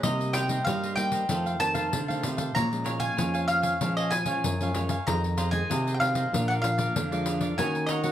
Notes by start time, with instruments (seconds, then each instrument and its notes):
0.03 nylon-string guitar C3 G3 A#3 D#4, cavaquinho D#4 A#4 C5 D#5, mandolin D#5, pandeiro
0.20 muted cavaquinho stroke, pandeiro
0.33 cavaquinho D#4 A#4 C5 D#5, mandolin G5, pandeiro
0.48 nylon-string guitar G3 A#3 D#4, cavaquinho A#4 C5 D#5, pandeiro
0.65 nylon-string guitar G2 G3, cavaquinho D#4 A#4 C5, mandolin F5, pandeiro
0.69 cavaquinho D#5
0.83 cavaquinho A#4 C5 D#5, pandeiro
0.96 nylon-string guitar G3 A#3 D#4, mandolin G5, pandeiro
1.12 cavaquinho A#4 C5 D#5, pandeiro
1.29 nylon-string guitar F2 D#3 F3 A3 C4, cavaquinho D#4 A4 C5 F5, pandeiro
1.46 cavaquinho A4 C5 F5, pandeiro
1.60 nylon-string guitar D#3 A3 C4, mandolin A5, muted cavaquinho stroke, pandeiro
1.74 cavaquinho A4 C5 F5, pandeiro
1.93 nylon-string guitar C3 D3, pandeiro
2.08 nylon-string guitar D#3 A3 C4, cavaquinho A4 C5 F5, pandeiro
2.23 nylon-string guitar C3, cavaquinho D#4 A4 C5 F5, pandeiro
2.37 cavaquinho A4 C5 F5, pandeiro
2.55 nylon-string guitar A#2 F3 G#3 C#4, cavaquinho A#4 C#5 F5 G#5, mandolin A#5, pandeiro
2.71 nylon-string guitar F3 G#3 C#4, muted cavaquinho stroke, pandeiro
2.84 cavaquinho A#4 C#5 F5 G#5, pandeiro
2.99 cavaquinho C#5 F5 G#5, mandolin G#5, pandeiro
3.17 nylon-string guitar F2 F3 G#3 C#4, cavaquinho A#4 C#5 F5 G#5, pandeiro
3.34 cavaquinho C#5 F5 G#5, pandeiro
3.48 mandolin F5, pandeiro
3.62 cavaquinho C#5 F5 G#5, pandeiro
3.81 nylon-string guitar A#2 F3 G#3 C#4, cavaquinho A#4 C#5 F5 G#5, pandeiro
3.97 cavaquinho C#5 F5 G#5, mandolin D#5, pandeiro
4.11 mandolin G#5, muted cavaquinho stroke, pandeiro
4.26 nylon-string guitar F3 G#3 C#4, cavaquinho C#5 F5 G#5, pandeiro
4.44 nylon-string guitar F#2, pandeiro
4.61 nylon-string guitar F3 G#3 C#4, cavaquinho C#5 F5 G#5, pandeiro
4.75 nylon-string guitar F3 G#3 C#4, cavaquinho A#4 C#5 F5 G#5, pandeiro
4.89 cavaquinho C#5 F5 G#5, pandeiro
5.07 nylon-string guitar F2 D#3 G#3 C4, cavaquinho F4 G#4 C5 D#5, mandolin A#5, pandeiro
5.24 muted cavaquinho stroke, pandeiro
5.37 cavaquinho F4 G#4 C5 D#5, pandeiro
5.51 nylon-string guitar D#3 G#3 C4, cavaquinho G#4 C5 D#5, mandolin G#5, pandeiro
5.70 nylon-string guitar C3, cavaquinho F4 G#4 C5 D#5, pandeiro
5.87 cavaquinho G#4 C5 D#5, pandeiro
5.94 mandolin G5
6.00 nylon-string guitar D#3 G#3 C4, mandolin F5, pandeiro
6.15 cavaquinho G#4 C5 D#5, pandeiro
6.32 nylon-string guitar A#2 F3 G#3 D4, cavaquinho G#4 A#4 D5 F5, pandeiro
6.48 cavaquinho A#4 D5 F5, mandolin F#5, pandeiro
6.62 nylon-string guitar F3 G#3 D4, mandolin F5, muted cavaquinho stroke, pandeiro
6.78 cavaquinho A#4 D5 F5, pandeiro
6.95 nylon-string guitar F2 D3, pandeiro
7.11 nylon-string guitar F3 G#3 D4, cavaquinho A#4 D5 F5, pandeiro
7.26 cavaquinho G#4 A#4 D5 F5, pandeiro
7.41 cavaquinho A#4 D5 F5, pandeiro
7.58 nylon-string guitar D#3 A#3 C#4 F#4, cavaquinho D#4 A#4 C#5 F#5, mandolin G#5, pandeiro
7.75 muted cavaquinho stroke, pandeiro
7.87 cavaquinho D#4 A#4 C#5 F#5, mandolin D#5, pandeiro
8.03 nylon-string guitar A#3 C#4 F#4, cavaquinho A#4 C#5 F#5, pandeiro